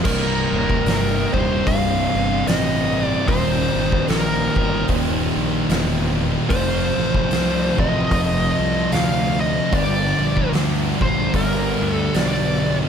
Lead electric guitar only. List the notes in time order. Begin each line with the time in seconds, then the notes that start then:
0.05 A#4
1.34 C5
1.67 F5
2.48 D#5
3.05 D5
3.28 C5
4.10 A#4
6.50 C5
7.80 D#5
8.93 F5
9.41 D#5
9.74 D5
11.02 C5
11.36 A#4
11.92 A4
12.15 D5